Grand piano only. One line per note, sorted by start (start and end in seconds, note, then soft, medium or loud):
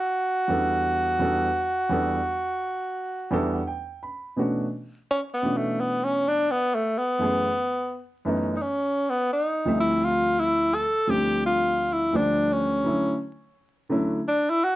0.48 1.18 E2 medium
0.48 1.18 G3 medium
0.48 1.19 B3 medium
0.48 1.19 D4 medium
0.48 1.20 F#4 medium
0.48 1.20 A4 medium
1.19 1.47 E2 medium
1.19 1.47 G3 medium
1.19 1.47 B3 medium
1.19 1.48 D4 medium
1.19 1.48 F#4 medium
1.19 1.48 A4 medium
1.89 2.17 E2 medium
1.89 2.17 G3 medium
1.89 2.18 B3 medium
1.89 2.18 D4 medium
1.89 2.18 F#4 medium
1.89 2.19 A4 medium
3.31 3.58 E2 medium
3.31 3.59 G3 medium
3.31 3.59 B3 medium
3.31 3.59 D4 medium
3.31 3.60 F#4 medium
3.31 3.60 A4 loud
3.31 3.52 E5 medium
3.53 3.66 F#5 medium
3.67 4.00 G5 medium
4.03 4.35 B5 medium
4.36 4.64 B2 medium
4.36 4.64 E3 medium
4.36 4.65 A3 medium
4.36 4.65 C#4 medium
4.36 4.65 D4 medium
4.36 4.66 F#4 medium
5.42 6.43 B2 medium
5.42 6.44 E3 medium
5.42 6.44 A3 medium
5.42 6.44 C#4 medium
5.42 6.45 D4 medium
5.42 6.45 F#4 medium
7.19 7.47 F#2 medium
7.19 7.47 E3 medium
7.19 7.47 A3 medium
7.19 7.47 B3 medium
7.19 7.48 C#4 medium
7.19 7.48 G#4 medium
8.25 8.53 F#2 medium
8.25 8.53 E3 medium
8.25 8.53 A3 medium
8.25 8.53 B3 medium
8.25 8.54 C#4 medium
8.25 8.54 D#4 medium
9.65 10.81 D2 medium
9.65 10.81 F3 medium
9.65 10.81 G3 medium
9.65 10.82 A3 medium
9.65 10.82 C4 medium
9.65 10.82 E5 medium
11.07 12.08 D2 medium
11.07 12.08 F3 medium
11.07 12.09 G3 medium
11.07 12.09 A3 medium
11.07 12.09 C4 medium
11.07 12.09 D4 medium
12.12 12.84 D2 medium
12.12 12.82 D3 medium
12.12 12.84 F3 medium
12.12 12.85 G3 medium
12.12 12.83 A3 medium
12.12 12.85 C5 medium
12.84 13.11 D3 medium
12.84 13.12 F#3 medium
12.84 13.12 A3 medium
12.84 13.12 C#4 medium
12.84 13.13 E4 medium
13.89 14.17 D3 medium
13.89 14.18 F#3 medium
13.89 14.18 A3 medium
13.89 14.18 C#4 medium
13.89 14.19 E4 medium